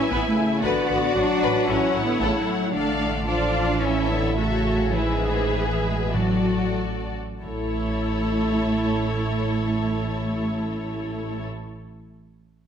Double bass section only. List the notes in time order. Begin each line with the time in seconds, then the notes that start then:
0.12 A1
0.63 A1
0.90 A1
1.16 A1
1.42 A1
1.69 A1
1.95 A1
2.21 A1
2.74 A1
7.43 A1